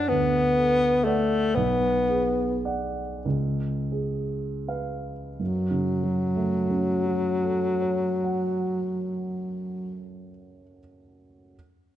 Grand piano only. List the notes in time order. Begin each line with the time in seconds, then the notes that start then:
Already playing: F#2 A4 C#5 F#5
0.10 D2
0.58 A4
1.06 D5 F#5
1.57 B1
2.09 G#4
2.65 D5 F#5
3.25 C#2
3.92 G#4
4.68 B4 F5
5.39 F#2
5.70 C#3
6.03 F#3
6.36 A3
6.70 C#4
7.06 F#4
7.43 A4
7.82 C#5
8.24 F#5